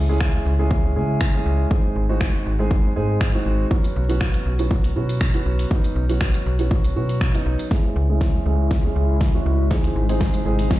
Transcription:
Already playing: C#2
0.09 G#3 C#4 E4 G#4
0.21 finger snap, kick
0.46 C#2
0.59 G#3 C#4 E4 G#4
0.71 kick
0.96 C#3 G#3 C#4 E4 G#4
1.21 finger snap, kick
1.34 G#3 C#4 E4 G#4
1.46 C#2
1.71 G#3 C4 D#4 G#4, kick
1.96 G#1
2.09 G#3 C4 D#4 F#4
2.21 finger snap, kick
2.46 G#1
2.59 G#3 C4 D#4 G#4
2.71 kick
2.96 G#2 G#3 C4 D#4 G#4
3.21 finger snap, kick
3.34 G#3 C4 D#4 F#4
3.46 G#1
3.71 F#3 B3 C#4 F#4, kick
3.84 closed hi-hat
3.96 B1
4.09 F#3 B3 C#4 F#4, closed hi-hat
4.21 finger snap, kick
4.34 closed hi-hat
4.46 B1
4.59 F#3 B3 C#4 F#4, closed hi-hat
4.71 kick
4.84 closed hi-hat
4.96 B2 F#3 B3 C#4 F#4
5.09 closed hi-hat
5.21 finger snap, kick
5.34 F#3 B3 C#4 F#4, closed hi-hat
5.46 B1
5.59 closed hi-hat
5.71 F#3 B3 C#4 D#4, kick
5.84 closed hi-hat
5.96 B1
6.09 F#3 B3 C#4 F#4, closed hi-hat
6.21 finger snap, kick
6.34 closed hi-hat
6.46 B1
6.59 F#3 B3 C#4 F#4, closed hi-hat
6.71 kick
6.84 closed hi-hat
6.96 B2 F#3 B3 C#4 F#4
7.09 closed hi-hat
7.21 finger snap, kick
7.34 F#3 B3 C#4 D#4, closed hi-hat
7.46 B1
7.59 closed hi-hat
7.71 C#3 G#3 C#4 E4 G#4, kick, snare
7.96 C#2
8.09 G#3 C#4 E4 G#4
8.21 kick, snare
8.46 C#2 G#3 C#4 E4 G#4
8.71 kick, snare
8.84 G#3 C#4 E4 G#4
8.96 C#2
9.21 kick, snare
9.34 G#3 C#4 E4 F#4
9.46 C#2
9.71 C3 G#3 C4 D#4 G#4, kick, snare
9.84 closed hi-hat
9.96 G#1
10.09 G#3 C4 D#4 G#4, closed hi-hat
10.21 kick, snare
10.34 closed hi-hat
10.46 G#1 G#3 C4 D#4 G#4
10.59 closed hi-hat
10.71 kick, snare

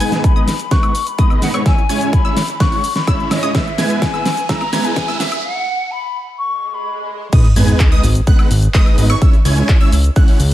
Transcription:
Already playing: G#5, riser
0.00 G#3 B3 D#4 B4 G#5 G#6, open hi-hat, shaker
0.12 snare, closed hi-hat, shaker
0.24 B5, kick, closed hi-hat, shaker
0.36 G#3 B3 D#4 B4 D#5 D#6, shaker
0.48 snare, open hi-hat, shaker
0.59 closed hi-hat, shaker
0.71 G#3 B3 D#4 B4 F#5 C#6 F#6, kick, snare, closed hi-hat, shaker
0.83 closed hi-hat, high woodblock, shaker
0.95 open hi-hat, shaker
1.07 B5, closed hi-hat, shaker
1.18 G#3 B3 D#4 B4 D#5 D#6, kick, closed hi-hat, shaker
1.30 high woodblock, shaker
1.42 F#5, snare, open hi-hat, shaker
1.54 G#3 B3 D#4 B4 C#5 C#6, closed hi-hat, high woodblock, shaker
1.66 G#3 C#4 E4 C#5 E5 G#5 E6, kick, snare, closed hi-hat, shaker
1.78 shaker
1.89 G#3 C#4 E4 C#5 G#5 G#6, open hi-hat, shaker
2.01 closed hi-hat, shaker
2.13 B5, kick, closed hi-hat, shaker
2.25 G#3 C#4 E4 C#5 E5 E6, shaker
2.37 snare, open hi-hat, shaker
2.48 closed hi-hat, shaker
2.60 G#3 C#4 E4 C#5 F#5 C#6 F#6, kick, snare, closed hi-hat, shaker
2.72 open hi-hat, shaker
2.84 open hi-hat, shaker
2.96 B5, snare, closed hi-hat, shaker
3.07 G#3 C#4 E4 C#5 E5 E6, kick, closed hi-hat, high woodblock, shaker
3.20 shaker
3.31 D#5, snare, open hi-hat, high woodblock, shaker
3.43 G#3 C#4 E4 C#5 D#5 D#6, closed hi-hat, shaker
3.55 G#3 B3 E4 B4 E5 E6, kick, snare, closed hi-hat, shaker
3.67 shaker
3.78 G#3 B3 E4 B4 G#5 G#6, snare, open hi-hat, shaker
3.90 closed hi-hat, shaker
4.02 G#5, kick, snare, closed hi-hat, shaker
4.14 G#3 B3 E4 B4 E5 E6, shaker
4.26 snare, open hi-hat, shaker
4.37 closed hi-hat, shaker
4.49 G#3 B3 E4 B4 E5 A#5 E6, kick, snare, closed hi-hat, shaker
4.61 closed hi-hat, high woodblock, shaker
4.73 G#3 B3 E4 B4 G#5 G#6, snare, open hi-hat, shaker
4.85 G#5, closed hi-hat, shaker
4.96 kick, snare, closed hi-hat, shaker
5.08 G#3 B3 E4 B4 E5 E6, high woodblock, shaker
5.20 E5, snare, open hi-hat, shaker
5.32 closed hi-hat, high woodblock, shaker
5.44 F#5
5.91 B5
6.38 C#6, swell
6.74 B5
7.33 G#3 B3 D#4 B4 D#5 D#6, kick, closed hi-hat, crash, sub drop, shaker
7.44 closed hi-hat, shaker
7.56 G#1 G#3 B3 D#4 B4 G#5 G#6, open hi-hat, shaker
7.68 closed hi-hat, shaker
7.80 kick, clap, closed hi-hat, shaker
7.92 G#3 B3 D#4 B4 D#5 D#6, closed hi-hat, shaker
8.04 G#1, open hi-hat, shaker
8.15 closed hi-hat, shaker
8.27 G#3 B3 D#4 B4 F#5 F#6, kick, closed hi-hat, shaker
8.39 closed hi-hat, high woodblock, shaker
8.51 G#1, open hi-hat, shaker
8.63 closed hi-hat, shaker
8.74 G#3 B3 D#4 B4 D#5 D#6, kick, clap, closed hi-hat, shaker
8.86 closed hi-hat, high woodblock, shaker
8.98 G#1, open hi-hat, shaker
9.10 G#3 B3 D#4 B4 C#5 C#6, closed hi-hat, high woodblock, shaker
9.22 G#3 C#4 E4 C#5 E5 E6, kick, closed hi-hat, shaker
9.33 closed hi-hat, shaker
9.45 C#2 G#3 C#4 E4 C#5 G#5 G#6, open hi-hat, shaker
9.57 closed hi-hat, shaker
9.69 kick, clap, closed hi-hat, shaker
9.81 G#3 C#4 E4 C#5 E5 E6, closed hi-hat, shaker
9.92 C#2, open hi-hat, shaker
10.04 closed hi-hat, shaker
10.16 G#3 C#4 E4 C#5 F#5 F#6, kick, closed hi-hat, shaker
10.28 open hi-hat, shaker
10.40 C#2, open hi-hat, shaker

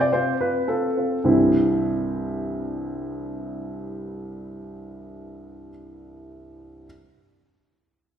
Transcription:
0.01 D5
0.13 C4 F4 C5
0.41 C4 F4 B4
0.68 C4 F4 A4
0.97 C4 F4
1.24 C2 G2 E3 G3 C4 E4

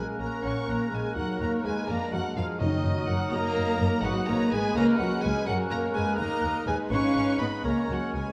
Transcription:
Already playing: G#3 A#3 C#4 G#4 A#4 F#6
0.16 A#1 A#3 A#4 C#5
0.20 A#5
0.42 A#1 C#4 C#5 F#5 C#6
0.66 A#1 A#3 A#4 C#5 A#5
0.90 A#1 G#3 G#4 B4 G#5
1.15 D#2 F#3 D#4 F#4 A#4 F#5
1.37 D#2 A#3 A#4 C#5
1.41 A#3 A#5
1.63 D#2 G#3 G#4 B4 G#5
1.87 F2 G#3 A#3 D4 A#4 D5 A#5 F6
2.11 F2 F#3 F#4 A#4 F#5
2.36 F2 F3 F4 G#4 F5
2.59 F#2 D#3 F#3 D#4 F#4 A#4 D#5 D#6
2.83 F#2
3.08 F#2 F#3 F#4 A#4 F#5
3.31 F#2 A#3 A#4 D#5 A#5
3.55 F#2
3.79 F#2
4.02 G#1 F#3 G#3 D#4 F#4 B4 F#5 D#6
4.26 G#1 A#3 A#4 C#5 A#5
4.50 G#1 G#3 G#4 B4 G#5
4.74 C#2 A#3 C#4 A#4 C#5 A#5 F6
4.98 C#2 F#3 F#4 A#4 F#5
5.22 C#2 G#3 G#4 B4 G#5
5.46 F#2 F#3 A#3 F#4 A#4 F#5 F#6
5.70 F#2 A#3 A#4 C#5 A#5
5.94 F#2 G#3 G#4 B4 G#5
6.18 D#2 A#3 D#4 A#4 D#5 A#5
6.42 D#2
6.66 D#2 G#3 G#4 B4 G#5
6.90 G#1 G#3 C#4 D#4 B4 C#5 F5 C#6 F#6
7.15 G#1
7.39 G#1 B3 B4 D#5 B5
7.63 C#2 G#3 A#3 C#4 A#4 C#5 A#5 F6
7.87 C#2 F#3 F#4 A#4 F#5
8.14 C#2 G#3 G#4 B4 G#5

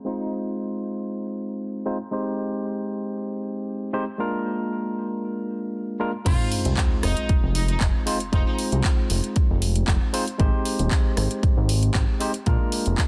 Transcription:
0.05 G#3 C4 D#4 F4 C5
0.19 D#4
1.86 G#3 C4 D#4 F4 C5
2.11 G#3 C4 D#4 G4 C5
3.93 G#3 C4 D#4 G4 C5
4.18 G#3 A#3 D4 F4 A#4
6.00 G#3 A#3 D4 F4 A#4
6.25 F1 G#3 C4 D#4 F4 C5, kick, closed hi-hat, crash, sub drop
6.52 open hi-hat
6.65 C2, closed hi-hat
6.77 kick, clap, closed hi-hat
7.03 F1 D#4, cross-stick, open hi-hat
7.17 closed hi-hat
7.29 F1, kick, closed hi-hat
7.43 F1
7.55 D#4, open hi-hat
7.68 D#4, closed hi-hat
7.81 F1, kick, clap, closed hi-hat
8.06 G#3 C4 D#4 F4 C5, open hi-hat
8.20 closed hi-hat
8.32 F1 G#3 C4 D#4 F4 C5, kick, closed hi-hat
8.47 D#4
8.59 open hi-hat
8.72 C2, closed hi-hat
8.84 kick, clap, closed hi-hat
9.10 F1, open hi-hat
9.24 closed hi-hat
9.36 kick, closed hi-hat
9.50 F1
9.62 open hi-hat
9.76 closed hi-hat
9.88 F1, kick, clap, closed hi-hat
10.13 G#3 C4 D#4 F4 C5, open hi-hat
10.27 closed hi-hat
10.38 G#1 G#3 C4 D#4 G4 C5, kick, closed hi-hat
10.65 open hi-hat
10.79 D#1, closed hi-hat
10.91 kick, clap, closed hi-hat
11.17 G#1, cross-stick, open hi-hat
11.31 closed hi-hat
11.43 G#1, kick, closed hi-hat
11.57 G#1
11.69 open hi-hat
11.83 closed hi-hat
11.94 G#1, kick, clap, closed hi-hat
12.20 G#3 C4 D#4 G4 C5, open hi-hat
12.34 closed hi-hat
12.46 A#1 G#3 A#3 D4 F4 A#4, kick, closed hi-hat
12.72 open hi-hat
12.86 F1, closed hi-hat
12.98 kick, clap, closed hi-hat

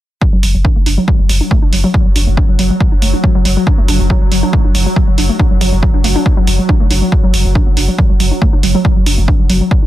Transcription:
0.21 F#3, kick
0.33 F#1 F#3
0.43 F#1 F#3, open hi-hat
0.54 F#1 F#3
0.65 D4, kick
0.76 F#1 A3
0.86 F#1 D4, open hi-hat
0.98 F#3
1.08 F#3, kick
1.19 F#1 F#3
1.29 F#1 F#3, open hi-hat
1.41 D4
1.51 A3, kick
1.62 F#1 D4
1.73 F#1 F#3, open hi-hat
1.84 F#3
1.94 F#3, kick
2.05 F#1 F#3
2.16 F#1 D4, open hi-hat
2.27 F#1 A3
2.37 D4, kick
2.49 F#1 F#3
2.59 F#1 F#3, open hi-hat
2.70 F#3
2.80 F#3, kick
2.92 F#1 D4
3.02 F#1 A3, open hi-hat
3.13 D4
3.24 F#3, kick
3.35 F#1 F#3
3.45 F#1 F#3, open hi-hat
3.57 F#3
3.67 D4, kick
3.78 F#1 A3
3.88 F#1 D4, open hi-hat
4.00 F#1 F#3
4.10 F#3, kick
4.21 F#1 F#3
4.32 F#1 F#3, open hi-hat
4.43 D4
4.53 A3, kick
4.64 F#1 D4
4.75 F#1 F#3, open hi-hat
4.86 F#3
4.96 F#3, kick
5.08 F#1 F#3
5.18 F#1 D4, open hi-hat
5.29 A3
5.39 D4, kick
5.51 F#1 F#3
5.61 F#1 F#3, open hi-hat
5.72 F#1 F#3
5.83 F#3, kick
5.94 F#1 D4
6.04 F#1 A3, open hi-hat
6.16 D4
6.26 F#3, kick
6.37 F#1 F#3
6.47 F#1 F#3, open hi-hat
6.59 F#3
6.69 D4, kick
6.80 F#1 A3
6.91 F#1 D4, open hi-hat
7.02 F#3
7.12 F#3, kick
7.24 F#1 F#3
7.34 F#1 F#3, open hi-hat
7.45 F#1 F#3
7.55 D4, kick
7.67 F#1 A3
7.77 F#1 D4, open hi-hat
7.88 F#3
7.99 F#3, kick
8.10 F#1 F#3
8.20 F#1 F#3, open hi-hat
8.31 D4
8.42 A3, kick
8.53 F#1 D4
8.63 F#1 F#3, open hi-hat
8.75 F#3
8.85 F#3, kick
8.96 F#1 F#3
9.06 F#1 D4, open hi-hat
9.18 F#1 A3
9.28 D4, kick
9.39 F#1 F#3
9.50 F#1 F#3, open hi-hat
9.61 F#3
9.71 F#3, kick
9.83 F#1 D4

